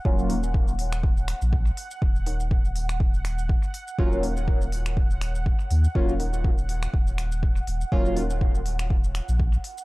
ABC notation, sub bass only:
X:1
M:4/4
L:1/16
Q:"Swing 16ths" 1/4=122
K:Ebm
V:1 name="Sub bass" clef=bass
E,,,8- E,,,2 z B,,,2 z3 | E,,,12 z4 | E,,,12 z2 E,, z | E,,,6- E,,, z E,,,4- E,,, z E,,, z |
E,,,8- E,,,2 z B,,,2 z3 |]